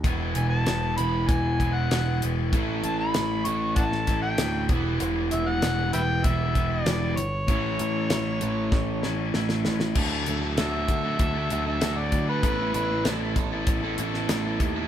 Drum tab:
CC |----------------|----------------|----------------|----------------|
HH |x-x-x-x-x-x-x-x-|x-x-x-x-x-x-x-x-|x-x-x-x-x-x-x-x-|x-x-x-x---------|
SD |----o-------o---|----o----oo-o---|----o-------o---|----o---o-o-oooo|
BD |o-------o-o-----|o-------o-o---o-|--------o-o-----|o-------o-------|

CC |x---------------|----------------|
HH |--x-x-x-x-x-x-x-|x-x-x-x-x-x-x-x-|
SD |----o-------o---|----o------oo---|
BD |o-----o-o-----o-|o-----o-o-----o-|